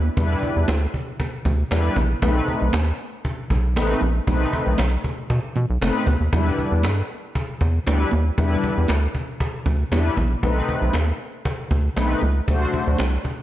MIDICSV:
0, 0, Header, 1, 5, 480
1, 0, Start_track
1, 0, Key_signature, 1, "minor"
1, 0, Tempo, 512821
1, 160, Time_signature, 4, 2, 24, 8
1, 12566, End_track
2, 0, Start_track
2, 0, Title_t, "Analog polysynth"
2, 0, Program_c, 0, 90
2, 158, Note_on_c, 0, 55, 85
2, 159, Note_on_c, 0, 62, 78
2, 162, Note_on_c, 0, 64, 73
2, 165, Note_on_c, 0, 71, 91
2, 632, Note_off_c, 0, 55, 0
2, 632, Note_off_c, 0, 62, 0
2, 634, Note_off_c, 0, 64, 0
2, 635, Note_off_c, 0, 71, 0
2, 1597, Note_on_c, 0, 55, 80
2, 1599, Note_on_c, 0, 62, 68
2, 1603, Note_on_c, 0, 64, 82
2, 1605, Note_on_c, 0, 71, 99
2, 1835, Note_off_c, 0, 55, 0
2, 1836, Note_off_c, 0, 62, 0
2, 1838, Note_off_c, 0, 64, 0
2, 1839, Note_off_c, 0, 71, 0
2, 2075, Note_on_c, 0, 57, 85
2, 2079, Note_on_c, 0, 63, 74
2, 2080, Note_on_c, 0, 60, 73
2, 2084, Note_on_c, 0, 71, 91
2, 2550, Note_off_c, 0, 57, 0
2, 2552, Note_off_c, 0, 63, 0
2, 2553, Note_off_c, 0, 60, 0
2, 2555, Note_off_c, 0, 71, 0
2, 3516, Note_on_c, 0, 57, 85
2, 3521, Note_on_c, 0, 60, 75
2, 3521, Note_on_c, 0, 63, 83
2, 3524, Note_on_c, 0, 71, 91
2, 3755, Note_off_c, 0, 57, 0
2, 3757, Note_off_c, 0, 60, 0
2, 3757, Note_off_c, 0, 63, 0
2, 3759, Note_off_c, 0, 71, 0
2, 3998, Note_on_c, 0, 57, 83
2, 4001, Note_on_c, 0, 60, 77
2, 4005, Note_on_c, 0, 63, 84
2, 4006, Note_on_c, 0, 71, 92
2, 4472, Note_off_c, 0, 57, 0
2, 4473, Note_off_c, 0, 60, 0
2, 4475, Note_off_c, 0, 63, 0
2, 4476, Note_off_c, 0, 71, 0
2, 5441, Note_on_c, 0, 57, 84
2, 5444, Note_on_c, 0, 60, 76
2, 5445, Note_on_c, 0, 63, 69
2, 5450, Note_on_c, 0, 71, 100
2, 5677, Note_off_c, 0, 57, 0
2, 5678, Note_off_c, 0, 60, 0
2, 5679, Note_off_c, 0, 63, 0
2, 5682, Note_off_c, 0, 71, 0
2, 5916, Note_on_c, 0, 54, 67
2, 5920, Note_on_c, 0, 62, 78
2, 5925, Note_on_c, 0, 64, 79
2, 5925, Note_on_c, 0, 71, 86
2, 5978, Note_on_c, 0, 55, 85
2, 5979, Note_off_c, 0, 54, 0
2, 6393, Note_off_c, 0, 62, 0
2, 6395, Note_off_c, 0, 64, 0
2, 6395, Note_off_c, 0, 71, 0
2, 6422, Note_off_c, 0, 55, 0
2, 7358, Note_on_c, 0, 55, 75
2, 7360, Note_on_c, 0, 62, 74
2, 7362, Note_on_c, 0, 64, 74
2, 7364, Note_on_c, 0, 71, 90
2, 7596, Note_off_c, 0, 55, 0
2, 7596, Note_off_c, 0, 62, 0
2, 7598, Note_off_c, 0, 64, 0
2, 7598, Note_off_c, 0, 71, 0
2, 7839, Note_on_c, 0, 55, 89
2, 7842, Note_on_c, 0, 62, 72
2, 7845, Note_on_c, 0, 64, 83
2, 7849, Note_on_c, 0, 71, 91
2, 8312, Note_off_c, 0, 55, 0
2, 8314, Note_off_c, 0, 62, 0
2, 8315, Note_off_c, 0, 64, 0
2, 8317, Note_off_c, 0, 71, 0
2, 9278, Note_on_c, 0, 55, 83
2, 9278, Note_on_c, 0, 62, 77
2, 9282, Note_on_c, 0, 71, 86
2, 9283, Note_on_c, 0, 64, 70
2, 9515, Note_off_c, 0, 55, 0
2, 9515, Note_off_c, 0, 62, 0
2, 9518, Note_off_c, 0, 64, 0
2, 9518, Note_off_c, 0, 71, 0
2, 9761, Note_on_c, 0, 57, 78
2, 9763, Note_on_c, 0, 60, 83
2, 9766, Note_on_c, 0, 63, 79
2, 9769, Note_on_c, 0, 71, 96
2, 10233, Note_off_c, 0, 57, 0
2, 10234, Note_off_c, 0, 60, 0
2, 10236, Note_off_c, 0, 63, 0
2, 10237, Note_off_c, 0, 71, 0
2, 11199, Note_on_c, 0, 57, 82
2, 11201, Note_on_c, 0, 60, 76
2, 11203, Note_on_c, 0, 63, 77
2, 11204, Note_on_c, 0, 71, 95
2, 11436, Note_off_c, 0, 57, 0
2, 11437, Note_off_c, 0, 60, 0
2, 11438, Note_off_c, 0, 63, 0
2, 11439, Note_off_c, 0, 71, 0
2, 11684, Note_on_c, 0, 57, 80
2, 11684, Note_on_c, 0, 62, 71
2, 11689, Note_on_c, 0, 66, 83
2, 11691, Note_on_c, 0, 72, 94
2, 12155, Note_off_c, 0, 57, 0
2, 12155, Note_off_c, 0, 62, 0
2, 12158, Note_off_c, 0, 66, 0
2, 12158, Note_off_c, 0, 72, 0
2, 12566, End_track
3, 0, Start_track
3, 0, Title_t, "Analog synth bass"
3, 0, Program_c, 1, 38
3, 160, Note_on_c, 1, 40, 101
3, 332, Note_off_c, 1, 40, 0
3, 528, Note_on_c, 1, 40, 87
3, 609, Note_off_c, 1, 40, 0
3, 640, Note_on_c, 1, 38, 106
3, 812, Note_off_c, 1, 38, 0
3, 1361, Note_on_c, 1, 38, 101
3, 1532, Note_off_c, 1, 38, 0
3, 1603, Note_on_c, 1, 40, 88
3, 1774, Note_off_c, 1, 40, 0
3, 1839, Note_on_c, 1, 34, 105
3, 2011, Note_off_c, 1, 34, 0
3, 2083, Note_on_c, 1, 35, 109
3, 2254, Note_off_c, 1, 35, 0
3, 2450, Note_on_c, 1, 35, 91
3, 2530, Note_off_c, 1, 35, 0
3, 2563, Note_on_c, 1, 39, 102
3, 2734, Note_off_c, 1, 39, 0
3, 3278, Note_on_c, 1, 35, 87
3, 3525, Note_on_c, 1, 33, 82
3, 3539, Note_off_c, 1, 35, 0
3, 3695, Note_off_c, 1, 33, 0
3, 3762, Note_on_c, 1, 34, 98
3, 3933, Note_off_c, 1, 34, 0
3, 3999, Note_on_c, 1, 35, 96
3, 4171, Note_off_c, 1, 35, 0
3, 4368, Note_on_c, 1, 35, 92
3, 4449, Note_off_c, 1, 35, 0
3, 4483, Note_on_c, 1, 35, 103
3, 4654, Note_off_c, 1, 35, 0
3, 4962, Note_on_c, 1, 47, 98
3, 5053, Note_off_c, 1, 47, 0
3, 5207, Note_on_c, 1, 47, 108
3, 5295, Note_off_c, 1, 47, 0
3, 5333, Note_on_c, 1, 35, 96
3, 5412, Note_off_c, 1, 35, 0
3, 5443, Note_on_c, 1, 30, 87
3, 5533, Note_off_c, 1, 30, 0
3, 5680, Note_on_c, 1, 38, 95
3, 5771, Note_off_c, 1, 38, 0
3, 5807, Note_on_c, 1, 39, 80
3, 5888, Note_off_c, 1, 39, 0
3, 5924, Note_on_c, 1, 40, 95
3, 6094, Note_off_c, 1, 40, 0
3, 6289, Note_on_c, 1, 40, 94
3, 6402, Note_on_c, 1, 43, 89
3, 6416, Note_off_c, 1, 40, 0
3, 6573, Note_off_c, 1, 43, 0
3, 7123, Note_on_c, 1, 40, 104
3, 7294, Note_off_c, 1, 40, 0
3, 7366, Note_on_c, 1, 38, 89
3, 7536, Note_off_c, 1, 38, 0
3, 7607, Note_on_c, 1, 39, 102
3, 7776, Note_off_c, 1, 39, 0
3, 7844, Note_on_c, 1, 40, 105
3, 8014, Note_off_c, 1, 40, 0
3, 8214, Note_on_c, 1, 40, 91
3, 8292, Note_off_c, 1, 40, 0
3, 8325, Note_on_c, 1, 38, 99
3, 8495, Note_off_c, 1, 38, 0
3, 9041, Note_on_c, 1, 38, 102
3, 9212, Note_off_c, 1, 38, 0
3, 9282, Note_on_c, 1, 40, 90
3, 9453, Note_off_c, 1, 40, 0
3, 9522, Note_on_c, 1, 34, 101
3, 9693, Note_off_c, 1, 34, 0
3, 9763, Note_on_c, 1, 35, 113
3, 9934, Note_off_c, 1, 35, 0
3, 10125, Note_on_c, 1, 35, 100
3, 10207, Note_off_c, 1, 35, 0
3, 10240, Note_on_c, 1, 39, 95
3, 10412, Note_off_c, 1, 39, 0
3, 10959, Note_on_c, 1, 38, 95
3, 11131, Note_off_c, 1, 38, 0
3, 11200, Note_on_c, 1, 35, 75
3, 11372, Note_off_c, 1, 35, 0
3, 11442, Note_on_c, 1, 37, 97
3, 11613, Note_off_c, 1, 37, 0
3, 11679, Note_on_c, 1, 38, 99
3, 11851, Note_off_c, 1, 38, 0
3, 12049, Note_on_c, 1, 38, 100
3, 12129, Note_off_c, 1, 38, 0
3, 12164, Note_on_c, 1, 36, 99
3, 12334, Note_off_c, 1, 36, 0
3, 12566, End_track
4, 0, Start_track
4, 0, Title_t, "Cajon"
4, 159, Note_on_c, 9, 36, 123
4, 252, Note_off_c, 9, 36, 0
4, 400, Note_on_c, 9, 36, 78
4, 494, Note_off_c, 9, 36, 0
4, 637, Note_on_c, 9, 38, 92
4, 644, Note_off_c, 9, 38, 0
4, 644, Note_on_c, 9, 38, 112
4, 738, Note_off_c, 9, 38, 0
4, 879, Note_on_c, 9, 36, 85
4, 973, Note_off_c, 9, 36, 0
4, 1120, Note_on_c, 9, 36, 101
4, 1213, Note_off_c, 9, 36, 0
4, 1358, Note_on_c, 9, 36, 93
4, 1452, Note_off_c, 9, 36, 0
4, 1600, Note_on_c, 9, 38, 81
4, 1607, Note_off_c, 9, 38, 0
4, 1607, Note_on_c, 9, 38, 105
4, 1701, Note_off_c, 9, 38, 0
4, 1838, Note_on_c, 9, 36, 92
4, 1932, Note_off_c, 9, 36, 0
4, 2081, Note_on_c, 9, 36, 127
4, 2174, Note_off_c, 9, 36, 0
4, 2321, Note_on_c, 9, 36, 77
4, 2415, Note_off_c, 9, 36, 0
4, 2555, Note_on_c, 9, 38, 101
4, 2562, Note_off_c, 9, 38, 0
4, 2562, Note_on_c, 9, 38, 119
4, 2656, Note_off_c, 9, 38, 0
4, 2798, Note_on_c, 9, 38, 41
4, 2892, Note_off_c, 9, 38, 0
4, 3039, Note_on_c, 9, 36, 101
4, 3133, Note_off_c, 9, 36, 0
4, 3278, Note_on_c, 9, 36, 97
4, 3372, Note_off_c, 9, 36, 0
4, 3521, Note_on_c, 9, 38, 74
4, 3528, Note_off_c, 9, 38, 0
4, 3528, Note_on_c, 9, 38, 109
4, 3621, Note_off_c, 9, 38, 0
4, 4000, Note_on_c, 9, 36, 116
4, 4093, Note_off_c, 9, 36, 0
4, 4241, Note_on_c, 9, 36, 83
4, 4334, Note_off_c, 9, 36, 0
4, 4479, Note_on_c, 9, 38, 88
4, 4486, Note_off_c, 9, 38, 0
4, 4486, Note_on_c, 9, 38, 108
4, 4579, Note_off_c, 9, 38, 0
4, 4720, Note_on_c, 9, 36, 83
4, 4813, Note_off_c, 9, 36, 0
4, 4961, Note_on_c, 9, 36, 109
4, 5054, Note_off_c, 9, 36, 0
4, 5198, Note_on_c, 9, 38, 43
4, 5292, Note_off_c, 9, 38, 0
4, 5443, Note_on_c, 9, 38, 83
4, 5450, Note_off_c, 9, 38, 0
4, 5450, Note_on_c, 9, 38, 104
4, 5543, Note_off_c, 9, 38, 0
4, 5680, Note_on_c, 9, 36, 83
4, 5774, Note_off_c, 9, 36, 0
4, 5923, Note_on_c, 9, 36, 124
4, 6016, Note_off_c, 9, 36, 0
4, 6162, Note_on_c, 9, 36, 76
4, 6256, Note_off_c, 9, 36, 0
4, 6400, Note_on_c, 9, 38, 88
4, 6407, Note_off_c, 9, 38, 0
4, 6407, Note_on_c, 9, 38, 111
4, 6501, Note_off_c, 9, 38, 0
4, 6644, Note_on_c, 9, 38, 43
4, 6737, Note_off_c, 9, 38, 0
4, 6883, Note_on_c, 9, 36, 106
4, 6976, Note_off_c, 9, 36, 0
4, 7122, Note_on_c, 9, 36, 85
4, 7215, Note_off_c, 9, 36, 0
4, 7362, Note_on_c, 9, 38, 74
4, 7369, Note_off_c, 9, 38, 0
4, 7369, Note_on_c, 9, 38, 100
4, 7462, Note_off_c, 9, 38, 0
4, 7842, Note_on_c, 9, 36, 124
4, 7936, Note_off_c, 9, 36, 0
4, 8083, Note_on_c, 9, 36, 85
4, 8177, Note_off_c, 9, 36, 0
4, 8322, Note_on_c, 9, 38, 90
4, 8329, Note_off_c, 9, 38, 0
4, 8329, Note_on_c, 9, 38, 110
4, 8422, Note_off_c, 9, 38, 0
4, 8561, Note_on_c, 9, 36, 86
4, 8655, Note_off_c, 9, 36, 0
4, 8802, Note_on_c, 9, 36, 108
4, 8895, Note_off_c, 9, 36, 0
4, 9041, Note_on_c, 9, 36, 100
4, 9134, Note_off_c, 9, 36, 0
4, 9282, Note_on_c, 9, 38, 83
4, 9289, Note_off_c, 9, 38, 0
4, 9289, Note_on_c, 9, 38, 100
4, 9383, Note_off_c, 9, 38, 0
4, 9520, Note_on_c, 9, 36, 89
4, 9614, Note_off_c, 9, 36, 0
4, 9762, Note_on_c, 9, 36, 127
4, 9856, Note_off_c, 9, 36, 0
4, 10002, Note_on_c, 9, 36, 88
4, 10096, Note_off_c, 9, 36, 0
4, 10241, Note_on_c, 9, 38, 98
4, 10248, Note_off_c, 9, 38, 0
4, 10248, Note_on_c, 9, 38, 114
4, 10341, Note_off_c, 9, 38, 0
4, 10482, Note_on_c, 9, 38, 38
4, 10576, Note_off_c, 9, 38, 0
4, 10720, Note_on_c, 9, 36, 109
4, 10813, Note_off_c, 9, 36, 0
4, 10958, Note_on_c, 9, 36, 95
4, 11052, Note_off_c, 9, 36, 0
4, 11199, Note_on_c, 9, 38, 80
4, 11206, Note_off_c, 9, 38, 0
4, 11206, Note_on_c, 9, 38, 99
4, 11299, Note_off_c, 9, 38, 0
4, 11680, Note_on_c, 9, 36, 124
4, 11774, Note_off_c, 9, 36, 0
4, 11921, Note_on_c, 9, 36, 87
4, 12015, Note_off_c, 9, 36, 0
4, 12158, Note_on_c, 9, 38, 89
4, 12165, Note_off_c, 9, 38, 0
4, 12165, Note_on_c, 9, 38, 113
4, 12259, Note_off_c, 9, 38, 0
4, 12400, Note_on_c, 9, 36, 85
4, 12493, Note_off_c, 9, 36, 0
4, 12566, End_track
5, 0, Start_track
5, 0, Title_t, "Drums"
5, 163, Note_on_c, 9, 62, 56
5, 257, Note_off_c, 9, 62, 0
5, 636, Note_on_c, 9, 63, 89
5, 730, Note_off_c, 9, 63, 0
5, 1133, Note_on_c, 9, 62, 32
5, 1226, Note_off_c, 9, 62, 0
5, 1365, Note_on_c, 9, 62, 51
5, 1365, Note_on_c, 9, 64, 63
5, 1458, Note_off_c, 9, 62, 0
5, 1458, Note_off_c, 9, 64, 0
5, 1611, Note_on_c, 9, 63, 65
5, 1705, Note_off_c, 9, 63, 0
5, 1836, Note_on_c, 9, 63, 71
5, 1930, Note_off_c, 9, 63, 0
5, 2090, Note_on_c, 9, 62, 58
5, 2184, Note_off_c, 9, 62, 0
5, 2556, Note_on_c, 9, 63, 85
5, 2649, Note_off_c, 9, 63, 0
5, 3280, Note_on_c, 9, 62, 45
5, 3374, Note_off_c, 9, 62, 0
5, 3524, Note_on_c, 9, 63, 75
5, 3617, Note_off_c, 9, 63, 0
5, 3753, Note_on_c, 9, 63, 72
5, 3846, Note_off_c, 9, 63, 0
5, 4004, Note_on_c, 9, 62, 52
5, 4098, Note_off_c, 9, 62, 0
5, 4474, Note_on_c, 9, 63, 82
5, 4568, Note_off_c, 9, 63, 0
5, 4969, Note_on_c, 9, 62, 29
5, 5063, Note_off_c, 9, 62, 0
5, 5201, Note_on_c, 9, 62, 48
5, 5201, Note_on_c, 9, 64, 66
5, 5294, Note_off_c, 9, 62, 0
5, 5294, Note_off_c, 9, 64, 0
5, 5448, Note_on_c, 9, 63, 66
5, 5542, Note_off_c, 9, 63, 0
5, 5675, Note_on_c, 9, 63, 72
5, 5769, Note_off_c, 9, 63, 0
5, 5928, Note_on_c, 9, 62, 50
5, 6021, Note_off_c, 9, 62, 0
5, 6397, Note_on_c, 9, 63, 83
5, 6491, Note_off_c, 9, 63, 0
5, 7120, Note_on_c, 9, 62, 46
5, 7214, Note_off_c, 9, 62, 0
5, 7368, Note_on_c, 9, 63, 68
5, 7461, Note_off_c, 9, 63, 0
5, 7595, Note_on_c, 9, 63, 76
5, 7688, Note_off_c, 9, 63, 0
5, 7844, Note_on_c, 9, 62, 56
5, 7938, Note_off_c, 9, 62, 0
5, 8314, Note_on_c, 9, 63, 82
5, 8408, Note_off_c, 9, 63, 0
5, 9040, Note_on_c, 9, 62, 49
5, 9040, Note_on_c, 9, 64, 67
5, 9134, Note_off_c, 9, 62, 0
5, 9134, Note_off_c, 9, 64, 0
5, 9289, Note_on_c, 9, 63, 75
5, 9382, Note_off_c, 9, 63, 0
5, 9514, Note_on_c, 9, 63, 66
5, 9608, Note_off_c, 9, 63, 0
5, 9765, Note_on_c, 9, 62, 53
5, 9859, Note_off_c, 9, 62, 0
5, 10234, Note_on_c, 9, 63, 80
5, 10328, Note_off_c, 9, 63, 0
5, 10959, Note_on_c, 9, 62, 48
5, 11053, Note_off_c, 9, 62, 0
5, 11206, Note_on_c, 9, 63, 75
5, 11300, Note_off_c, 9, 63, 0
5, 11433, Note_on_c, 9, 63, 76
5, 11526, Note_off_c, 9, 63, 0
5, 11683, Note_on_c, 9, 62, 56
5, 11777, Note_off_c, 9, 62, 0
5, 12153, Note_on_c, 9, 63, 87
5, 12247, Note_off_c, 9, 63, 0
5, 12566, End_track
0, 0, End_of_file